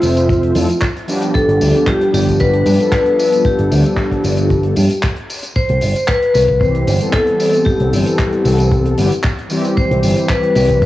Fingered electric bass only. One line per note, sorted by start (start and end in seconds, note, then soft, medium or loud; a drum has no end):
0.03 0.50 F1 medium
0.55 0.66 F2 loud
1.35 muted fingered electric bass stroke soft
1.48 1.58 G1 loud
1.61 1.71 D2 loud
2.13 2.61 G1 medium
2.66 2.76 G2 loud
3.45 muted fingered electric bass stroke soft
3.59 3.68 G1 loud
3.71 3.82 D2 loud
4.24 4.72 G1 medium
4.77 4.87 G2 loud
5.56 muted fingered electric bass stroke soft
5.69 5.79 C2 loud
5.82 5.92 G1 loud
6.35 6.82 C2 medium
6.87 6.98 G1 loud
7.66 muted fingered electric bass stroke soft
7.80 7.89 C2 loud
7.92 8.03 G1 loud
8.45 8.93 C2 medium
8.98 9.08 G1 loud
9.77 muted fingered electric bass stroke soft
9.91 10.00 C2 loud
10.03 10.13 G1 loud
10.56 10.86 C2 medium